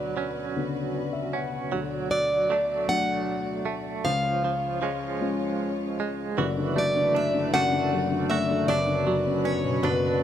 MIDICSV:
0, 0, Header, 1, 5, 480
1, 0, Start_track
1, 0, Tempo, 776197
1, 1062, Time_signature, 6, 3, 24, 8
1, 3944, Tempo, 767263
1, 6355, End_track
2, 0, Start_track
2, 0, Title_t, "Steel-string acoustic guitar"
2, 0, Program_c, 0, 25
2, 0, Note_on_c, 0, 74, 63
2, 562, Note_off_c, 0, 74, 0
2, 1304, Note_on_c, 0, 74, 78
2, 1784, Note_off_c, 0, 74, 0
2, 1787, Note_on_c, 0, 78, 101
2, 2238, Note_off_c, 0, 78, 0
2, 2502, Note_on_c, 0, 77, 88
2, 3440, Note_off_c, 0, 77, 0
2, 4198, Note_on_c, 0, 74, 85
2, 4415, Note_off_c, 0, 74, 0
2, 4435, Note_on_c, 0, 76, 93
2, 4654, Note_off_c, 0, 76, 0
2, 4669, Note_on_c, 0, 78, 97
2, 5141, Note_off_c, 0, 78, 0
2, 5144, Note_on_c, 0, 76, 80
2, 5383, Note_off_c, 0, 76, 0
2, 5386, Note_on_c, 0, 74, 90
2, 5865, Note_off_c, 0, 74, 0
2, 5867, Note_on_c, 0, 73, 83
2, 6106, Note_on_c, 0, 71, 81
2, 6112, Note_off_c, 0, 73, 0
2, 6355, Note_off_c, 0, 71, 0
2, 6355, End_track
3, 0, Start_track
3, 0, Title_t, "String section"
3, 0, Program_c, 1, 48
3, 0, Note_on_c, 1, 47, 63
3, 0, Note_on_c, 1, 59, 59
3, 0, Note_on_c, 1, 66, 59
3, 0, Note_on_c, 1, 71, 73
3, 1047, Note_off_c, 1, 59, 0
3, 1047, Note_off_c, 1, 71, 0
3, 1062, Note_on_c, 1, 74, 74
3, 1063, Note_on_c, 1, 57, 66
3, 2472, Note_off_c, 1, 66, 0
3, 2476, Note_off_c, 1, 47, 0
3, 2485, Note_off_c, 1, 57, 0
3, 2485, Note_off_c, 1, 74, 0
3, 2490, Note_on_c, 1, 49, 69
3, 2491, Note_on_c, 1, 56, 60
3, 2496, Note_on_c, 1, 65, 65
3, 2496, Note_on_c, 1, 73, 80
3, 3924, Note_off_c, 1, 49, 0
3, 3924, Note_off_c, 1, 56, 0
3, 3927, Note_off_c, 1, 65, 0
3, 3927, Note_off_c, 1, 73, 0
3, 3933, Note_on_c, 1, 52, 72
3, 3933, Note_on_c, 1, 57, 70
3, 3935, Note_on_c, 1, 42, 81
3, 3938, Note_on_c, 1, 66, 62
3, 3940, Note_on_c, 1, 74, 86
3, 5366, Note_off_c, 1, 52, 0
3, 5366, Note_off_c, 1, 57, 0
3, 5370, Note_off_c, 1, 74, 0
3, 5379, Note_on_c, 1, 71, 91
3, 5383, Note_on_c, 1, 59, 70
3, 6355, Note_off_c, 1, 42, 0
3, 6355, Note_off_c, 1, 59, 0
3, 6355, Note_off_c, 1, 66, 0
3, 6355, Note_off_c, 1, 71, 0
3, 6355, End_track
4, 0, Start_track
4, 0, Title_t, "Clean electric guitar"
4, 0, Program_c, 2, 27
4, 0, Note_on_c, 2, 54, 47
4, 100, Note_off_c, 2, 54, 0
4, 103, Note_on_c, 2, 54, 49
4, 107, Note_on_c, 2, 61, 49
4, 817, Note_off_c, 2, 61, 0
4, 825, Note_on_c, 2, 61, 47
4, 1057, Note_off_c, 2, 54, 0
4, 1064, Note_on_c, 2, 54, 69
4, 1110, Note_off_c, 2, 61, 0
4, 1297, Note_off_c, 2, 54, 0
4, 1305, Note_on_c, 2, 54, 50
4, 1542, Note_off_c, 2, 54, 0
4, 1547, Note_on_c, 2, 54, 50
4, 1553, Note_on_c, 2, 57, 41
4, 1556, Note_on_c, 2, 62, 54
4, 2253, Note_off_c, 2, 57, 0
4, 2260, Note_on_c, 2, 57, 54
4, 2501, Note_off_c, 2, 54, 0
4, 2504, Note_on_c, 2, 53, 65
4, 2547, Note_off_c, 2, 57, 0
4, 2555, Note_off_c, 2, 62, 0
4, 2741, Note_off_c, 2, 53, 0
4, 2748, Note_on_c, 2, 53, 50
4, 2971, Note_off_c, 2, 53, 0
4, 2978, Note_on_c, 2, 53, 54
4, 2984, Note_on_c, 2, 56, 54
4, 2988, Note_on_c, 2, 61, 50
4, 3702, Note_off_c, 2, 56, 0
4, 3710, Note_on_c, 2, 56, 54
4, 3942, Note_off_c, 2, 53, 0
4, 3945, Note_on_c, 2, 52, 81
4, 3947, Note_on_c, 2, 66, 63
4, 3994, Note_off_c, 2, 56, 0
4, 3995, Note_off_c, 2, 61, 0
4, 4184, Note_on_c, 2, 57, 55
4, 4425, Note_on_c, 2, 62, 58
4, 4661, Note_off_c, 2, 57, 0
4, 4669, Note_on_c, 2, 57, 64
4, 4670, Note_off_c, 2, 62, 0
4, 4673, Note_on_c, 2, 62, 60
4, 4675, Note_off_c, 2, 66, 0
4, 4678, Note_on_c, 2, 66, 66
4, 5144, Note_off_c, 2, 66, 0
4, 5152, Note_on_c, 2, 66, 66
4, 5387, Note_off_c, 2, 52, 0
4, 5390, Note_on_c, 2, 54, 73
4, 5394, Note_off_c, 2, 62, 0
4, 5397, Note_on_c, 2, 62, 66
4, 5436, Note_off_c, 2, 57, 0
4, 5437, Note_off_c, 2, 66, 0
4, 5619, Note_off_c, 2, 54, 0
4, 5627, Note_on_c, 2, 54, 57
4, 5865, Note_on_c, 2, 61, 56
4, 6098, Note_off_c, 2, 54, 0
4, 6104, Note_off_c, 2, 61, 0
4, 6105, Note_on_c, 2, 54, 58
4, 6111, Note_off_c, 2, 62, 0
4, 6113, Note_on_c, 2, 62, 71
4, 6355, Note_off_c, 2, 54, 0
4, 6355, Note_off_c, 2, 62, 0
4, 6355, End_track
5, 0, Start_track
5, 0, Title_t, "Felt piano"
5, 0, Program_c, 3, 0
5, 0, Control_c, 3, 64, 127
5, 0, Note_on_c, 3, 38, 53
5, 348, Note_on_c, 3, 50, 45
5, 349, Note_on_c, 3, 59, 42
5, 356, Note_on_c, 3, 49, 47
5, 588, Note_on_c, 3, 74, 51
5, 697, Note_off_c, 3, 74, 0
5, 698, Note_on_c, 3, 76, 56
5, 812, Note_off_c, 3, 76, 0
5, 826, Note_on_c, 3, 78, 59
5, 1041, Note_off_c, 3, 38, 0
5, 1042, Note_off_c, 3, 50, 0
5, 1043, Note_off_c, 3, 59, 0
5, 1046, Note_off_c, 3, 49, 0
5, 1047, Note_off_c, 3, 78, 0
5, 1065, Note_on_c, 3, 38, 54
5, 1069, Control_c, 3, 64, 0
5, 1197, Control_c, 3, 64, 127
5, 1779, Note_on_c, 3, 54, 47
5, 1784, Note_on_c, 3, 57, 42
5, 1786, Note_on_c, 3, 62, 53
5, 2476, Note_off_c, 3, 38, 0
5, 2477, Note_off_c, 3, 54, 0
5, 2480, Note_off_c, 3, 57, 0
5, 2481, Note_off_c, 3, 62, 0
5, 2506, Control_c, 3, 64, 0
5, 2506, Note_on_c, 3, 37, 61
5, 2609, Control_c, 3, 64, 127
5, 3222, Note_on_c, 3, 53, 45
5, 3225, Note_on_c, 3, 56, 44
5, 3228, Note_on_c, 3, 61, 52
5, 3922, Note_off_c, 3, 37, 0
5, 3922, Note_off_c, 3, 53, 0
5, 3923, Note_off_c, 3, 56, 0
5, 3925, Note_off_c, 3, 61, 0
5, 3944, Note_on_c, 3, 30, 59
5, 3947, Note_on_c, 3, 42, 65
5, 3952, Control_c, 3, 64, 0
5, 4064, Note_on_c, 3, 50, 47
5, 4073, Control_c, 3, 64, 127
5, 4181, Note_on_c, 3, 54, 52
5, 4299, Note_off_c, 3, 50, 0
5, 4309, Note_on_c, 3, 50, 51
5, 4429, Note_on_c, 3, 57, 52
5, 4540, Note_off_c, 3, 50, 0
5, 4549, Note_on_c, 3, 50, 53
5, 4660, Note_off_c, 3, 42, 0
5, 4662, Note_off_c, 3, 30, 0
5, 4669, Note_on_c, 3, 42, 72
5, 4671, Note_on_c, 3, 30, 66
5, 4776, Note_off_c, 3, 50, 0
5, 4786, Note_on_c, 3, 50, 47
5, 4903, Note_off_c, 3, 54, 0
5, 4912, Note_on_c, 3, 54, 50
5, 5020, Note_off_c, 3, 50, 0
5, 5029, Note_on_c, 3, 50, 51
5, 5139, Note_off_c, 3, 57, 0
5, 5148, Note_on_c, 3, 57, 56
5, 5257, Note_off_c, 3, 50, 0
5, 5266, Note_on_c, 3, 50, 59
5, 5364, Note_off_c, 3, 30, 0
5, 5367, Note_off_c, 3, 42, 0
5, 5375, Note_off_c, 3, 54, 0
5, 5378, Note_on_c, 3, 30, 59
5, 5380, Note_off_c, 3, 57, 0
5, 5382, Note_off_c, 3, 50, 0
5, 5382, Note_on_c, 3, 42, 66
5, 5393, Control_c, 3, 64, 0
5, 5499, Note_on_c, 3, 50, 50
5, 5502, Control_c, 3, 64, 127
5, 5625, Note_on_c, 3, 54, 59
5, 5749, Note_on_c, 3, 61, 53
5, 5865, Note_on_c, 3, 59, 56
5, 5984, Note_on_c, 3, 47, 51
5, 6094, Note_off_c, 3, 42, 0
5, 6097, Note_off_c, 3, 30, 0
5, 6104, Note_on_c, 3, 42, 73
5, 6106, Note_on_c, 3, 30, 74
5, 6336, Note_off_c, 3, 54, 0
5, 6355, Note_off_c, 3, 30, 0
5, 6355, Note_off_c, 3, 42, 0
5, 6355, Note_off_c, 3, 47, 0
5, 6355, Note_off_c, 3, 50, 0
5, 6355, Note_off_c, 3, 59, 0
5, 6355, Note_off_c, 3, 61, 0
5, 6355, End_track
0, 0, End_of_file